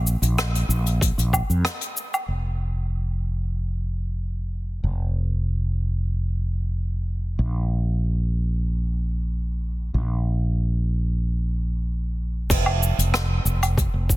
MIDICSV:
0, 0, Header, 1, 3, 480
1, 0, Start_track
1, 0, Tempo, 638298
1, 1718, Time_signature, 4, 2, 24, 8
1, 10654, End_track
2, 0, Start_track
2, 0, Title_t, "Fretless electric bass"
2, 0, Program_c, 0, 35
2, 0, Note_on_c, 0, 34, 98
2, 111, Note_off_c, 0, 34, 0
2, 165, Note_on_c, 0, 34, 96
2, 468, Note_off_c, 0, 34, 0
2, 517, Note_on_c, 0, 34, 103
2, 828, Note_off_c, 0, 34, 0
2, 887, Note_on_c, 0, 34, 95
2, 1057, Note_off_c, 0, 34, 0
2, 1125, Note_on_c, 0, 41, 80
2, 1239, Note_off_c, 0, 41, 0
2, 1716, Note_on_c, 0, 29, 72
2, 3614, Note_off_c, 0, 29, 0
2, 3637, Note_on_c, 0, 29, 77
2, 5534, Note_off_c, 0, 29, 0
2, 5556, Note_on_c, 0, 34, 78
2, 7454, Note_off_c, 0, 34, 0
2, 7477, Note_on_c, 0, 34, 78
2, 9375, Note_off_c, 0, 34, 0
2, 9399, Note_on_c, 0, 29, 92
2, 9709, Note_off_c, 0, 29, 0
2, 9763, Note_on_c, 0, 29, 88
2, 10068, Note_off_c, 0, 29, 0
2, 10115, Note_on_c, 0, 29, 97
2, 10427, Note_off_c, 0, 29, 0
2, 10480, Note_on_c, 0, 29, 90
2, 10653, Note_off_c, 0, 29, 0
2, 10654, End_track
3, 0, Start_track
3, 0, Title_t, "Drums"
3, 51, Note_on_c, 9, 69, 79
3, 126, Note_off_c, 9, 69, 0
3, 170, Note_on_c, 9, 42, 52
3, 173, Note_on_c, 9, 69, 49
3, 245, Note_off_c, 9, 42, 0
3, 248, Note_off_c, 9, 69, 0
3, 288, Note_on_c, 9, 42, 83
3, 289, Note_on_c, 9, 37, 89
3, 289, Note_on_c, 9, 69, 60
3, 363, Note_off_c, 9, 42, 0
3, 364, Note_off_c, 9, 37, 0
3, 364, Note_off_c, 9, 69, 0
3, 414, Note_on_c, 9, 42, 65
3, 418, Note_on_c, 9, 69, 45
3, 489, Note_off_c, 9, 42, 0
3, 493, Note_off_c, 9, 69, 0
3, 530, Note_on_c, 9, 69, 89
3, 605, Note_off_c, 9, 69, 0
3, 649, Note_on_c, 9, 42, 51
3, 652, Note_on_c, 9, 69, 49
3, 724, Note_off_c, 9, 42, 0
3, 727, Note_off_c, 9, 69, 0
3, 762, Note_on_c, 9, 36, 121
3, 768, Note_on_c, 9, 42, 93
3, 771, Note_on_c, 9, 69, 67
3, 837, Note_off_c, 9, 36, 0
3, 843, Note_off_c, 9, 42, 0
3, 847, Note_off_c, 9, 69, 0
3, 893, Note_on_c, 9, 69, 52
3, 894, Note_on_c, 9, 42, 67
3, 968, Note_off_c, 9, 69, 0
3, 969, Note_off_c, 9, 42, 0
3, 1001, Note_on_c, 9, 36, 66
3, 1004, Note_on_c, 9, 77, 86
3, 1007, Note_on_c, 9, 69, 88
3, 1076, Note_off_c, 9, 36, 0
3, 1079, Note_off_c, 9, 77, 0
3, 1082, Note_off_c, 9, 69, 0
3, 1129, Note_on_c, 9, 69, 49
3, 1204, Note_off_c, 9, 69, 0
3, 1239, Note_on_c, 9, 37, 94
3, 1241, Note_on_c, 9, 42, 80
3, 1249, Note_on_c, 9, 69, 60
3, 1314, Note_off_c, 9, 37, 0
3, 1317, Note_off_c, 9, 42, 0
3, 1325, Note_off_c, 9, 69, 0
3, 1361, Note_on_c, 9, 42, 62
3, 1371, Note_on_c, 9, 69, 42
3, 1436, Note_off_c, 9, 42, 0
3, 1446, Note_off_c, 9, 69, 0
3, 1481, Note_on_c, 9, 69, 87
3, 1556, Note_off_c, 9, 69, 0
3, 1609, Note_on_c, 9, 69, 54
3, 1609, Note_on_c, 9, 77, 85
3, 1684, Note_off_c, 9, 69, 0
3, 1685, Note_off_c, 9, 77, 0
3, 9400, Note_on_c, 9, 36, 112
3, 9402, Note_on_c, 9, 69, 64
3, 9404, Note_on_c, 9, 42, 68
3, 9405, Note_on_c, 9, 49, 102
3, 9475, Note_off_c, 9, 36, 0
3, 9478, Note_off_c, 9, 69, 0
3, 9479, Note_off_c, 9, 42, 0
3, 9480, Note_off_c, 9, 49, 0
3, 9521, Note_on_c, 9, 77, 74
3, 9596, Note_off_c, 9, 77, 0
3, 9648, Note_on_c, 9, 69, 88
3, 9724, Note_off_c, 9, 69, 0
3, 9770, Note_on_c, 9, 42, 72
3, 9773, Note_on_c, 9, 69, 57
3, 9845, Note_off_c, 9, 42, 0
3, 9849, Note_off_c, 9, 69, 0
3, 9880, Note_on_c, 9, 37, 101
3, 9883, Note_on_c, 9, 42, 58
3, 9888, Note_on_c, 9, 69, 60
3, 9955, Note_off_c, 9, 37, 0
3, 9958, Note_off_c, 9, 42, 0
3, 9963, Note_off_c, 9, 69, 0
3, 10122, Note_on_c, 9, 69, 84
3, 10197, Note_off_c, 9, 69, 0
3, 10247, Note_on_c, 9, 42, 67
3, 10248, Note_on_c, 9, 77, 75
3, 10251, Note_on_c, 9, 69, 55
3, 10322, Note_off_c, 9, 42, 0
3, 10324, Note_off_c, 9, 77, 0
3, 10326, Note_off_c, 9, 69, 0
3, 10359, Note_on_c, 9, 36, 124
3, 10362, Note_on_c, 9, 42, 70
3, 10364, Note_on_c, 9, 69, 65
3, 10435, Note_off_c, 9, 36, 0
3, 10437, Note_off_c, 9, 42, 0
3, 10439, Note_off_c, 9, 69, 0
3, 10599, Note_on_c, 9, 36, 68
3, 10603, Note_on_c, 9, 69, 88
3, 10654, Note_off_c, 9, 36, 0
3, 10654, Note_off_c, 9, 69, 0
3, 10654, End_track
0, 0, End_of_file